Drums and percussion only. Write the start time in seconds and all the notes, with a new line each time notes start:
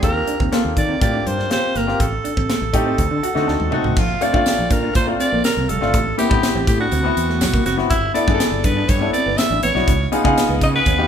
0.03 kick, closed hi-hat
0.27 closed hi-hat
0.40 kick
0.53 snare, closed hi-hat
0.77 kick, closed hi-hat
1.01 kick, closed hi-hat
1.27 closed hi-hat
1.39 snare
1.51 snare, closed hi-hat
1.75 snare, closed hi-hat
1.88 snare
2.00 kick, closed hi-hat
2.25 closed hi-hat
2.37 kick
2.50 snare, closed hi-hat
2.74 kick, closed hi-hat
2.98 kick, closed hi-hat
3.23 closed hi-hat
3.36 snare
3.48 snare
3.60 high tom
3.72 mid tom
3.84 floor tom
3.96 kick, crash
4.21 closed hi-hat, tambourine
4.34 kick
4.46 snare, closed hi-hat, tambourine
4.70 kick, closed hi-hat, tambourine
4.95 kick, closed hi-hat, tambourine
5.20 closed hi-hat, tambourine
5.44 snare, closed hi-hat, tambourine
5.69 closed hi-hat
5.82 snare
5.93 kick, closed hi-hat, tambourine
6.19 closed hi-hat, tambourine
6.31 kick
6.43 snare, closed hi-hat, tambourine
6.67 kick, closed hi-hat, tambourine
6.91 closed hi-hat, tambourine
7.17 closed hi-hat, tambourine
7.30 snare
7.41 snare, closed hi-hat, tambourine
7.54 kick
7.66 snare, closed hi-hat, tambourine
7.79 snare
7.90 kick, closed hi-hat, tambourine
8.15 closed hi-hat, tambourine
8.28 kick
8.40 snare, closed hi-hat, tambourine
8.64 kick, closed hi-hat, tambourine
8.88 kick, closed hi-hat, tambourine
9.14 closed hi-hat, tambourine
9.38 snare, closed hi-hat, tambourine
9.63 snare, closed hi-hat, tambourine
9.76 snare
9.88 kick, closed hi-hat
10.12 closed hi-hat, tambourine
10.25 kick
10.38 snare, closed hi-hat, tambourine
10.61 kick, closed hi-hat, tambourine
10.85 kick, closed hi-hat, tambourine